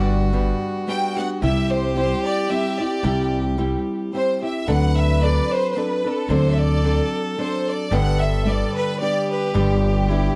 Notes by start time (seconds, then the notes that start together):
Already playing: G1 G2 D3 G3 B3 D4 F#4
0.33 G3 B3 D4
0.87 G3 B3 D4 G4 G5
1.16 G3 B3 D4 G4 F#5
1.41 C2 C3 G3 C4 E4 G4 E5
1.72 C5
1.95 G3 C4 E4 G4 C5
2.27 D5
2.50 G3 C4 E4 G4 E5
2.79 C4 E4 G4 D5
3.03 C2 C3 G3 C4 E4 G4
3.58 G3 C4 E4 G4
4.13 G3 C4 E4 G4 C5
4.42 C4 E4 G4 E5
4.67 D2 D3 F#3 C4 D4 A4 B4 F#5
4.97 E5
5.21 F#3 C4 D4 A4 D5
5.54 C5
5.72 C5
5.76 F#3 C4 D4 A4 B4
6.04 C4 D4 A4
6.28 D2 D3 F#3 C4 D4 A4 C5
6.52 E5
6.59 D5
6.84 F#3 C4 D4 A4
7.38 F#3 C4 D4 A4 C5
7.69 D5
7.91 G1 G2 D3 G3 B3 D4 G4 A4
7.95 F#5
8.21 E5
8.45 G3 B3 D4 G4 D5
8.75 B4
9.00 G3 B3 D4 G4 D5
9.32 B4
9.54 G1 G2 D3 G3 B3 D4 G4
10.09 G3 B3 D4 E4 G4